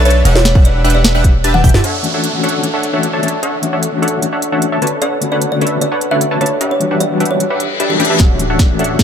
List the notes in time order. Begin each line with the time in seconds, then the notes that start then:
Already playing: B1
0.05 D4 A4 B4 C#5 A5 A6, closed hi-hat
0.10 closed hi-hat
0.25 E1 D4 G4 B4 E5 F#5 F#6, closed hi-hat, ride
0.35 C#5, snare
0.45 snare, closed hi-hat
0.55 D4 G4 B4 E5 F#5 F#6, kick
0.65 D5, closed hi-hat
0.84 D4 G4 B4 E5 F#5 F#6, closed hi-hat
0.90 closed hi-hat
0.95 D5
1.05 snare, closed hi-hat
1.15 D4 G4 B4 E5 F#5 F#6
1.24 kick, closed hi-hat
1.44 D4 G4 B4 E5 A5 A6, closed hi-hat
1.54 F#5, high tom
1.64 D4 G4 B4 E5 G5 G6, kick, open hi-hat, mid tom
1.69 closed hi-hat
1.74 D4 G4 B4 E5 A5 A6, snare, mid tom
1.84 D4 A4 C#5 E5 F#5, closed hi-hat, downlifter
2.03 E3 A3 C#4 D4 F#4, closed hi-hat
2.14 D4 A4 C#5 E5 F#5
2.24 closed hi-hat
2.33 E3 A3 C#4 D4 F#4
2.43 D4 A4 C#5 E5 F#5, closed hi-hat
2.49 closed hi-hat
2.62 E3 A3 C#4 D4 F#4, closed hi-hat
2.74 D4 A4 C#5 E5 F#5
2.83 closed hi-hat
2.93 E3 A3 C#4 D4 F#4 A4 C#5 E5 F#5
3.03 closed hi-hat
3.13 D4 A4 C#5 E5 A5
3.22 E3 A3 C#4 D4 F#4 A4 C#5 E5 A5, closed hi-hat
3.28 closed hi-hat
3.43 D4 A4 C#5 E5 F#5, closed hi-hat
3.62 E3 A3 C#4 D4 F#4, closed hi-hat
3.73 D4 A4 C#5 E5 F#5
3.83 closed hi-hat
3.92 E3 A3 C#4 D4 F#4
4.02 D4 A4 C#5 E5 F#5, closed hi-hat
4.08 closed hi-hat
4.21 E3 A3 C#4 D4 F#4, closed hi-hat
4.33 D4 A4 C#5 E5 F#5
4.42 closed hi-hat
4.52 E3 A3 C#4 D4 F#4 A4 C#5 E5 F#5
4.62 closed hi-hat
4.72 D4 A4 C#5 E5 A5
4.81 D3 A3 B3 C#4 D4 F#4 A4 B4 C#5 A5, closed hi-hat
4.87 closed hi-hat
5.02 D4 A4 B4 C#5 D5 F#5, closed hi-hat
5.21 D3 A3 B3 C#4 F#4, closed hi-hat
5.32 D4 A4 B4 C#5 D5 F#5
5.42 closed hi-hat
5.51 D3 A3 B3 C#4 F#4 D5
5.61 D4 A4 B4 C#5 E5, closed hi-hat
5.67 closed hi-hat
5.81 D3 A3 B3 C#4 F#4 D5, closed hi-hat
5.92 D4 A4 B4 C#5 F#5
6.01 closed hi-hat
6.11 D3 A3 B3 C#4 D4 F#4 A4 B4 C#5 E5 F#5
6.21 closed hi-hat
6.31 D4 A4 B4 C#5 A5
6.40 D3 A3 B3 C#4 D4 F#4 A4 B4 C#5 A5, closed hi-hat
6.46 closed hi-hat
6.61 D4 G4 B4 E5 F#5, closed hi-hat
6.71 C#5
6.80 E3 G3 B3 D4 F#4, closed hi-hat
6.91 D4 G4 B4 E5 F#5
7.00 D5, closed hi-hat
7.10 E3 G3 B3 D4 F#4
7.20 D4 G4 B4 E5 F#5, closed hi-hat
7.25 closed hi-hat
7.31 C#5
7.39 E3 G3 B3 D4 F#4, closed hi-hat, reverse cymbal
7.50 D4 G4 B4 E5 F#5
7.60 closed hi-hat
7.80 D4 G4 B4 E5 A5, closed hi-hat
7.89 E3 G3 B3 D4 F#4 G4
7.99 E3 A3 C#4 D4 F#4 G4 B4 E5 G5, closed hi-hat
8.05 closed hi-hat
8.10 D4 G4 B4 E5 A5
8.20 D1 D4 A4 C#5 E5, kick, snare, closed hi-hat, riser
8.38 E3 A3 C#4 D4 F#4, closed hi-hat
8.50 D4 A4 C#5 E5 F#5
8.59 kick, snare, closed hi-hat
8.69 E3 A3 C#4 D4 F#4
8.79 D4 A4 C#5 E5 F#5, closed hi-hat
8.84 closed hi-hat
8.98 E3 A3 C#4 D4 F#4, kick, snare, closed hi-hat